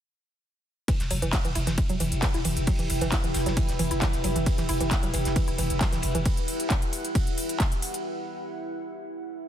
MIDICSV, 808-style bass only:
0, 0, Header, 1, 2, 480
1, 0, Start_track
1, 0, Key_signature, 1, "minor"
1, 0, Tempo, 447761
1, 947, Time_signature, 4, 2, 24, 8
1, 10166, End_track
2, 0, Start_track
2, 0, Title_t, "808-style bass"
2, 0, Program_c, 0, 38
2, 1071, Note_on_c, 0, 28, 75
2, 1179, Note_off_c, 0, 28, 0
2, 1185, Note_on_c, 0, 28, 99
2, 1304, Note_off_c, 0, 28, 0
2, 1310, Note_on_c, 0, 28, 83
2, 1423, Note_off_c, 0, 28, 0
2, 1551, Note_on_c, 0, 28, 81
2, 1658, Note_off_c, 0, 28, 0
2, 1665, Note_on_c, 0, 28, 102
2, 1784, Note_off_c, 0, 28, 0
2, 1790, Note_on_c, 0, 28, 82
2, 1903, Note_off_c, 0, 28, 0
2, 2031, Note_on_c, 0, 28, 81
2, 2139, Note_off_c, 0, 28, 0
2, 2146, Note_on_c, 0, 28, 97
2, 2265, Note_off_c, 0, 28, 0
2, 2271, Note_on_c, 0, 28, 84
2, 2384, Note_off_c, 0, 28, 0
2, 2511, Note_on_c, 0, 28, 80
2, 2619, Note_off_c, 0, 28, 0
2, 2626, Note_on_c, 0, 28, 96
2, 2746, Note_off_c, 0, 28, 0
2, 2752, Note_on_c, 0, 28, 85
2, 2864, Note_off_c, 0, 28, 0
2, 2991, Note_on_c, 0, 28, 77
2, 3099, Note_off_c, 0, 28, 0
2, 3106, Note_on_c, 0, 28, 101
2, 3225, Note_off_c, 0, 28, 0
2, 3231, Note_on_c, 0, 28, 82
2, 3344, Note_off_c, 0, 28, 0
2, 3471, Note_on_c, 0, 28, 79
2, 3579, Note_off_c, 0, 28, 0
2, 3586, Note_on_c, 0, 28, 101
2, 3705, Note_off_c, 0, 28, 0
2, 3711, Note_on_c, 0, 28, 85
2, 3824, Note_off_c, 0, 28, 0
2, 3951, Note_on_c, 0, 28, 77
2, 4059, Note_off_c, 0, 28, 0
2, 4066, Note_on_c, 0, 28, 102
2, 4185, Note_off_c, 0, 28, 0
2, 4191, Note_on_c, 0, 28, 84
2, 4304, Note_off_c, 0, 28, 0
2, 4431, Note_on_c, 0, 28, 81
2, 4539, Note_off_c, 0, 28, 0
2, 4545, Note_on_c, 0, 28, 97
2, 4666, Note_off_c, 0, 28, 0
2, 4672, Note_on_c, 0, 28, 88
2, 4784, Note_off_c, 0, 28, 0
2, 4912, Note_on_c, 0, 28, 77
2, 5020, Note_off_c, 0, 28, 0
2, 5026, Note_on_c, 0, 28, 100
2, 5145, Note_off_c, 0, 28, 0
2, 5152, Note_on_c, 0, 28, 82
2, 5264, Note_off_c, 0, 28, 0
2, 5392, Note_on_c, 0, 28, 84
2, 5500, Note_off_c, 0, 28, 0
2, 5506, Note_on_c, 0, 28, 102
2, 5627, Note_off_c, 0, 28, 0
2, 5634, Note_on_c, 0, 28, 84
2, 5745, Note_off_c, 0, 28, 0
2, 5872, Note_on_c, 0, 28, 79
2, 5980, Note_off_c, 0, 28, 0
2, 5986, Note_on_c, 0, 28, 101
2, 6105, Note_off_c, 0, 28, 0
2, 6112, Note_on_c, 0, 28, 82
2, 6224, Note_off_c, 0, 28, 0
2, 6351, Note_on_c, 0, 28, 77
2, 6460, Note_off_c, 0, 28, 0
2, 6466, Note_on_c, 0, 28, 102
2, 6585, Note_off_c, 0, 28, 0
2, 6592, Note_on_c, 0, 28, 88
2, 6704, Note_off_c, 0, 28, 0
2, 10166, End_track
0, 0, End_of_file